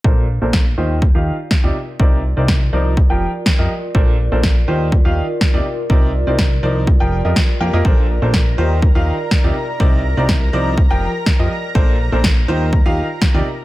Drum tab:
SD |--o---o-|--o---o-|--o---o-|--o---o-|
BD |o-o-o-o-|o-o-o-o-|o-o-o-o-|o-o-o-o-|

SD |--o---o-|--o---o-|--o---o-|
BD |o-o-o-o-|o-o-o-o-|o-o-o-o-|